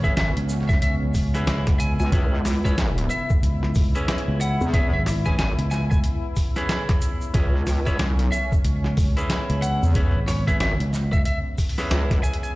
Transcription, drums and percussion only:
0.04 kick, shaker
0.17 snare, closed hi-hat, shaker
0.37 closed hi-hat
0.49 snare, shaker
0.60 snare
0.69 kick, snare, shaker
0.82 closed hi-hat, shaker
1.14 kick, open hi-hat, shaker
1.35 snare, closed hi-hat, shaker
1.47 snare, closed hi-hat, shaker
1.67 kick, snare, closed hi-hat
1.80 closed hi-hat, shaker
2.00 shaker
2.12 kick, closed hi-hat, shaker
2.45 snare, open hi-hat, shaker
2.65 kick, shaker
2.78 snare, closed hi-hat, shaker
2.98 closed hi-hat
3.10 shaker
3.30 kick, shaker
3.43 closed hi-hat, shaker
3.63 snare
3.75 kick, open hi-hat, shaker
3.95 closed hi-hat, shaker
4.08 snare, closed hi-hat, shaker
4.18 closed hi-hat
4.41 closed hi-hat, shaker
4.61 shaker
4.74 kick, closed hi-hat, shaker
5.06 snare, open hi-hat, shaker
5.25 kick, shaker
5.39 snare, closed hi-hat, shaker
5.59 closed hi-hat
5.71 snare, shaker
5.91 kick, shaker
6.04 closed hi-hat, shaker
6.36 kick, open hi-hat, shaker
6.56 snare, closed hi-hat, shaker
6.69 snare, closed hi-hat, shaker
6.89 kick, snare, closed hi-hat
7.02 closed hi-hat, shaker
7.21 shaker
7.34 kick, closed hi-hat, shaker
7.67 snare, open hi-hat, shaker
7.86 kick, shaker
7.99 snare, closed hi-hat, shaker
8.19 closed hi-hat
8.32 shaker
8.52 kick, shaker
8.64 closed hi-hat, shaker
8.84 snare
8.97 kick, open hi-hat, shaker
9.17 closed hi-hat, shaker
9.30 snare, closed hi-hat, shaker
9.50 closed hi-hat
9.62 closed hi-hat, shaker
9.83 shaker
9.95 kick, closed hi-hat, shaker
10.28 snare, open hi-hat, shaker
10.48 kick, closed hi-hat, shaker
10.60 snare, closed hi-hat, shaker
10.80 closed hi-hat
10.93 snare, shaker
11.13 kick, shaker
11.25 closed hi-hat, shaker
11.58 kick, open hi-hat, shaker
11.69 open hi-hat
11.78 snare, closed hi-hat, open hi-hat, shaker
11.90 snare, closed hi-hat, shaker
12.11 kick, snare, closed hi-hat
12.24 shaker
12.33 closed hi-hat
12.44 shaker

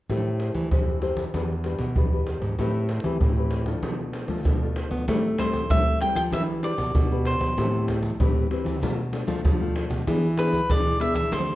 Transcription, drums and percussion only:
0.10 pandeiro, surdo
0.26 pandeiro
0.40 pandeiro
0.55 pandeiro, surdo
0.71 pandeiro, surdo
0.88 pandeiro
1.02 pandeiro
1.17 pandeiro, surdo
1.34 pandeiro, surdo
1.50 pandeiro
1.64 pandeiro
1.79 pandeiro, surdo
1.96 pandeiro, surdo
2.12 pandeiro
2.27 pandeiro
2.42 pandeiro, surdo
2.59 pandeiro, surdo
2.74 pandeiro
2.89 pandeiro
3.04 pandeiro, surdo
3.21 pandeiro, surdo
3.37 pandeiro
3.51 pandeiro
3.66 pandeiro, surdo
3.83 pandeiro, surdo
3.99 pandeiro
4.13 pandeiro
4.28 pandeiro, surdo
4.45 pandeiro, surdo
4.62 pandeiro
4.76 pandeiro
4.91 pandeiro, surdo
5.08 pandeiro, shaker, surdo
5.24 pandeiro, shaker
5.38 pandeiro, shaker, surdo
5.53 pandeiro, shaker, surdo
5.70 pandeiro, shaker, surdo
5.86 pandeiro, shaker
6.01 pandeiro
6.16 pandeiro, shaker, surdo
6.32 pandeiro, shaker, surdo
6.49 pandeiro, shaker
6.63 pandeiro
6.78 pandeiro, shaker, surdo
6.95 pandeiro, shaker, surdo
7.12 pandeiro, shaker
7.25 pandeiro, shaker
7.41 pandeiro, shaker, surdo
7.58 pandeiro, shaker, surdo
7.74 pandeiro, shaker
7.88 pandeiro, surdo
8.03 pandeiro, shaker, surdo
8.20 pandeiro, shaker, surdo
8.37 pandeiro, shaker
8.51 pandeiro
8.66 pandeiro, shaker, surdo
8.83 pandeiro, shaker, surdo
8.99 pandeiro, shaker
9.13 pandeiro, shaker
9.28 pandeiro, shaker, surdo
9.45 pandeiro, shaker, surdo
9.61 pandeiro, shaker
9.76 pandeiro
9.91 pandeiro, shaker, surdo
10.07 pandeiro, shaker, surdo
10.23 pandeiro, shaker
10.37 pandeiro, shaker
10.53 pandeiro, shaker, surdo
10.70 pandeiro, shaker, surdo
10.86 pandeiro, shaker
11.00 pandeiro
11.15 pandeiro, shaker, surdo
11.32 pandeiro, shaker, surdo
11.48 pandeiro, shaker

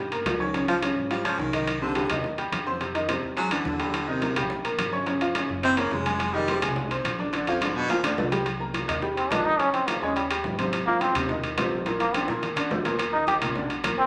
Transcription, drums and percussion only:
0.12 high conga, high timbale
0.26 high bongo, low bongo, high conga, high timbale, low timbale
0.40 high conga
0.54 high bongo, high conga, high timbale
0.68 high bongo, high conga, high timbale
0.82 high bongo, high conga, high timbale
0.96 high conga
1.10 high bongo, high conga, high timbale
1.24 high bongo, high conga, high timbale
1.39 high bongo, low bongo, high conga
1.53 high bongo, high conga, high timbale
1.67 high bongo, high conga, high timbale
1.82 high conga
1.95 high bongo, high conga, high timbale
2.10 high conga, low conga, high timbale
2.24 high bongo, high conga
2.38 high conga, high timbale
2.52 high bongo, low bongo, high conga, high timbale
2.67 high conga
2.81 high bongo, high conga, high timbale
2.95 high bongo, high conga, high timbale
3.09 high bongo, high conga, high timbale
3.23 high conga
3.37 high bongo, high conga, high timbale
3.51 high bongo, high timbale
3.65 high bongo, low bongo, high conga
3.79 high bongo, high conga, high timbale
3.94 high bongo, high conga, high timbale
4.08 high conga
4.22 high bongo, high conga, high timbale
4.36 high conga, low conga, high timbale
4.50 high bongo, high conga
4.65 high conga, high timbale
4.78 high bongo, low bongo, high conga, high timbale
4.93 high conga
5.06 high bongo, high conga, high timbale
5.21 high bongo, high conga, high timbale
5.35 high bongo, high conga, high timbale
5.49 high conga
5.63 high bongo, high conga, high timbale
5.77 high bongo, high conga, high timbale
5.91 high bongo, low bongo, high conga
6.05 high bongo, high conga, high timbale
6.19 high bongo, high conga, high timbale
6.34 high conga
6.48 high bongo, high conga, high timbale
6.62 high conga, low conga, high timbale
6.76 high bongo, high conga, low conga
6.90 high conga, high timbale
7.04 high bongo, low bongo, high conga, high timbale
7.19 high conga
7.33 high bongo, high conga, high timbale
7.47 high bongo, high conga, high timbale
7.61 high bongo, high conga, high timbale
7.76 high conga
7.90 high bongo, high conga, high timbale
8.03 low bongo, high timbale
8.18 high conga, low timbale
8.32 low bongo, high conga, high timbale
8.46 high bongo, high conga, high timbale
8.60 high conga
8.74 high bongo, high conga, high timbale
8.89 high conga, low conga, high timbale
9.02 high bongo, high conga
9.17 high conga, high timbale
9.31 high bongo, low bongo, high conga, high timbale, low timbale
9.45 high conga
9.59 high bongo, high conga, high timbale
9.74 high bongo, high conga, high timbale
9.87 high bongo, high conga, high timbale
10.03 high conga
10.16 high bongo, high conga, high timbale
10.30 high bongo, high conga, high timbale
10.44 high bongo, low bongo, high conga
10.59 high bongo, high conga, high timbale
10.73 high bongo, high conga, high timbale
10.87 high conga
11.01 high bongo, high conga, high timbale
11.15 high conga, low conga, high timbale
11.29 high bongo, high conga, low conga
11.44 high conga, high timbale
11.58 high bongo, low bongo, high conga, high timbale, low timbale
11.72 high conga
11.86 high bongo, high conga, high timbale
12.00 high bongo, high conga, high timbale
12.14 low bongo, high conga, high timbale
12.28 high bongo, high conga
12.43 low bongo, high conga, high timbale
12.56 low bongo, high timbale
12.71 low bongo, high conga, low timbale
12.85 low bongo, high conga, high timbale
12.99 high bongo, high conga, high timbale
13.14 high conga
13.27 high bongo, high conga, high timbale
13.42 high conga, low conga, high timbale
13.56 high bongo, high conga, low conga
13.70 high conga, high timbale
13.84 high bongo, low bongo, high conga, high timbale
13.99 high conga

